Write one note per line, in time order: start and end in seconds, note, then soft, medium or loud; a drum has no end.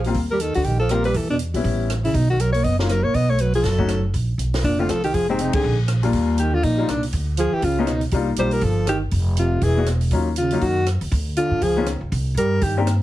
0.00 0.13 A#1 medium
0.04 0.14 G3 medium
0.04 0.14 A#3 medium
0.04 0.15 C4 medium
0.04 0.15 F4 medium
0.04 open hi-hat soft
0.14 0.52 D#2 medium
0.14 kick soft
0.14 open hi-hat soft
0.31 0.43 G3 medium
0.31 0.42 A#4 medium
0.40 0.55 D#3 medium
0.40 0.54 A4 medium
0.40 closed hi-hat medium
0.54 0.64 D2 medium
0.54 0.67 D3 medium
0.54 0.66 F#4 medium
0.54 open hi-hat soft
0.64 1.12 A#1 medium
0.64 0.80 D#3 medium
0.64 0.79 G4 medium
0.64 kick soft
0.64 open hi-hat soft
0.79 0.93 F3 medium
0.79 0.92 A4 medium
0.89 1.03 G3 medium
0.89 1.04 G3 medium
0.89 1.04 A#3 medium
0.89 1.04 C4 medium
0.89 1.04 F4 medium
0.89 1.04 A#4 medium
0.89 cross-stick soft
0.89 closed hi-hat soft
1.04 1.18 G3 medium
1.04 1.18 B4 loud
1.04 open hi-hat soft
1.14 1.52 E2 medium
1.14 1.29 E3 medium
1.14 1.30 A4 medium
1.14 kick soft
1.14 open hi-hat soft
1.30 1.39 B2 medium
1.30 1.36 D4 medium
1.39 closed hi-hat medium
1.54 1.64 B1 medium
1.54 1.87 G3 medium
1.54 1.88 B3 medium
1.54 1.88 C#4 soft
1.54 1.88 E4 medium
1.54 open hi-hat soft
1.64 2.12 A1 medium
1.64 kick soft
1.64 open hi-hat soft
1.90 cross-stick medium
1.90 closed hi-hat soft
2.04 2.17 C#3 medium
2.04 2.16 E4 medium
2.04 open hi-hat soft
2.14 2.62 B1 medium
2.14 2.29 B2 medium
2.14 2.29 D#4 medium
2.14 kick soft
2.14 open hi-hat soft
2.29 2.41 D#3 medium
2.29 2.42 F#4 medium
2.39 2.54 F#3 medium
2.39 2.52 A#4 medium
2.39 closed hi-hat medium
2.53 2.66 A#3 medium
2.53 2.65 C#5 medium
2.53 open hi-hat soft
2.64 3.01 F#1 medium
2.64 2.78 B3 medium
2.64 2.78 D#5 medium
2.64 kick soft
2.64 open hi-hat soft
2.79 2.92 D#3 soft
2.79 2.88 A#3 medium
2.79 2.89 C#4 medium
2.79 2.89 D#4 medium
2.79 2.89 F4 medium
2.79 2.91 F#4 soft
2.79 snare soft
2.89 3.05 F#3 medium
2.89 3.05 A#4 medium
2.89 cross-stick medium
2.89 closed hi-hat medium
3.03 3.13 A#1 medium
3.03 3.16 A#3 medium
3.03 3.16 C#5 medium
3.14 3.61 B1 medium
3.14 3.32 B3 medium
3.14 3.31 D#5 medium
3.14 kick soft
3.14 open hi-hat soft
3.30 3.42 A3 medium
3.30 3.42 C#5 medium
3.38 3.54 F#3 medium
3.38 3.54 B4 medium
3.38 closed hi-hat soft
3.53 3.67 F3 medium
3.53 3.65 G#4 medium
3.53 open hi-hat soft
3.63 4.11 F#1 medium
3.63 4.04 F#3 medium
3.63 4.04 A4 medium
3.63 kick soft
3.63 snare soft
3.63 open hi-hat soft
3.78 3.88 A3 medium
3.78 3.88 C#4 medium
3.78 3.88 D#4 medium
3.78 3.88 F#4 medium
3.78 kick soft
3.88 cross-stick medium
3.88 closed hi-hat soft
4.14 4.37 A#1 medium
4.14 kick soft
4.14 open hi-hat soft
4.38 4.62 B1 medium
4.38 closed hi-hat soft
4.54 snare soft
4.54 open hi-hat soft
4.64 4.87 F1 medium
4.64 4.80 A#2 medium
4.64 4.80 D4 medium
4.64 kick soft
4.64 open hi-hat soft
4.79 4.92 D3 medium
4.79 4.88 A3 medium
4.79 4.88 C4 medium
4.79 4.89 D4 medium
4.79 4.91 F4 medium
4.79 4.89 F4 medium
4.88 5.12 C2 medium
4.88 5.03 F3 medium
4.88 5.03 A4 medium
4.88 cross-stick medium
4.88 closed hi-hat soft
5.04 5.15 D#3 medium
5.04 5.16 G4 medium
5.04 open hi-hat soft
5.13 5.51 F1 medium
5.13 5.28 F3 medium
5.13 5.29 G#4 medium
5.13 kick soft
5.13 open hi-hat soft
5.29 5.42 G#2 soft
5.29 5.62 G#3 medium
5.29 5.62 C4 medium
5.29 5.42 C4 medium
5.29 5.62 D#4 medium
5.29 5.63 G4 medium
5.39 5.53 C3 medium
5.39 5.54 D#4 medium
5.39 closed hi-hat medium
5.53 5.77 D3 medium
5.53 5.77 G#4 medium
5.53 muted upright bass stroke soft
5.53 kick medium
5.53 ride medium
5.64 6.11 A#1 medium
5.88 cross-stick medium
5.88 closed hi-hat soft
6.03 6.36 D#2 medium
6.03 6.36 G3 medium
6.03 6.36 A#3 medium
6.03 6.37 D4 medium
6.03 6.37 F4 medium
6.03 open hi-hat soft
6.13 6.61 D#2 medium
6.13 kick soft
6.13 open hi-hat soft
6.38 6.54 D#3 medium
6.38 6.55 G4 medium
6.38 closed hi-hat medium
6.53 6.65 D3 medium
6.53 6.65 F4 medium
6.63 6.86 A#1 loud
6.63 6.90 A#2 medium
6.63 6.90 D#4 medium
6.63 kick soft
6.63 open hi-hat soft
6.77 6.87 G3 medium
6.77 6.87 A#3 medium
6.77 6.88 D4 medium
6.77 6.88 D#4 medium
6.77 6.88 F4 medium
6.88 7.11 C2 medium
6.88 7.04 A#2 medium
6.88 7.03 D4 medium
6.88 cross-stick medium
6.88 closed hi-hat medium
7.03 open hi-hat soft
7.13 7.50 D2 medium
7.13 kick soft
7.13 open hi-hat soft
7.37 7.54 F3 medium
7.37 7.55 G#4 medium
7.37 closed hi-hat medium
7.52 7.65 E3 medium
7.52 7.65 G4 medium
7.52 muted upright bass stroke soft
7.62 8.10 C#2 medium
7.62 7.90 C#3 medium
7.62 7.89 F4 medium
7.62 kick soft
7.62 open hi-hat soft
7.78 7.87 G#3 medium
7.78 7.87 B3 medium
7.78 7.88 C#4 medium
7.78 7.88 D#4 medium
7.78 7.88 F4 medium
7.87 8.03 B2 medium
7.87 8.02 D#4 medium
7.87 cross-stick medium
7.87 closed hi-hat soft
8.01 open hi-hat soft
8.11 8.36 C2 medium
8.11 8.26 G3 medium
8.11 8.26 A#3 medium
8.11 8.26 D4 medium
8.11 8.27 D#4 medium
8.11 8.27 F4 medium
8.11 kick soft
8.11 open hi-hat soft
8.36 8.60 B1 medium
8.36 8.51 G3 medium
8.36 8.52 G3 medium
8.36 8.51 A#3 medium
8.36 8.51 D4 medium
8.36 8.52 D#4 soft
8.36 8.52 F4 medium
8.36 8.55 C5 medium
8.36 closed hi-hat medium
8.51 8.65 G3 medium
8.51 8.65 A#4 medium
8.51 open hi-hat soft
8.61 9.09 G1 loud
8.61 8.88 F3 medium
8.61 8.88 A4 medium
8.61 kick soft
8.61 open hi-hat soft
8.87 9.02 D#3 medium
8.87 8.97 G4 medium
8.87 cross-stick medium
8.87 closed hi-hat medium
9.11 9.59 F1 medium
9.11 kick soft
9.11 open hi-hat medium
9.37 9.64 C3 medium
9.37 9.65 F4 medium
9.37 closed hi-hat medium
9.62 10.09 E1 medium
9.62 9.87 E3 medium
9.62 9.88 G#4 medium
9.62 kick soft
9.62 open hi-hat soft
9.77 9.86 G#3 medium
9.77 9.86 B3 medium
9.77 9.86 D4 medium
9.77 9.87 E4 medium
9.77 9.87 F#4 medium
9.86 cross-stick medium
9.86 closed hi-hat soft
10.01 open hi-hat soft
10.11 10.59 D#2 medium
10.11 10.25 F#3 medium
10.11 10.26 A#3 medium
10.11 10.26 C#4 medium
10.11 10.26 D#4 soft
10.11 10.26 F4 medium
10.11 kick soft
10.11 open hi-hat soft
10.36 10.63 C#3 medium
10.36 10.64 F4 medium
10.36 closed hi-hat medium
10.51 10.61 F#3 medium
10.51 10.61 A#3 medium
10.51 10.61 C#4 medium
10.51 10.62 D#4 medium
10.51 10.62 F4 medium
10.51 open hi-hat soft
10.61 10.98 F#2 medium
10.61 10.87 D#3 medium
10.61 10.87 F#4 loud
10.61 kick soft
10.61 open hi-hat soft
10.86 cross-stick medium
10.86 closed hi-hat soft
11.01 11.11 D#2 medium
11.01 open hi-hat soft
11.11 11.48 D2 loud
11.11 kick soft
11.11 open hi-hat soft
11.36 11.64 D3 medium
11.36 11.64 F4 medium
11.36 closed hi-hat medium
11.50 11.60 G#2 medium
11.62 11.98 C#2 medium
11.62 11.87 F3 medium
11.62 11.87 G#4 medium
11.62 kick soft
11.62 open hi-hat soft
11.77 11.86 D#3 medium
11.77 11.86 G#3 medium
11.77 11.86 B3 medium
11.77 11.86 C#4 medium
11.77 11.86 F4 medium
11.86 cross-stick medium
11.86 closed hi-hat medium
12.01 12.10 C#2 medium
12.12 12.34 C2 medium
12.12 kick soft
12.12 open hi-hat soft
12.35 12.59 G2 medium
12.35 12.66 G3 medium
12.35 12.64 A#4 medium
12.35 closed hi-hat medium
12.61 13.02 G2 medium
12.61 12.77 D#3 medium
12.61 12.77 G4 medium
12.61 kick soft
12.61 open hi-hat soft
12.77 12.86 D#3 medium
12.77 12.86 A#3 medium
12.77 12.86 C4 medium
12.77 12.86 D4 medium
12.77 12.86 G4 medium
12.87 cross-stick medium
12.87 closed hi-hat medium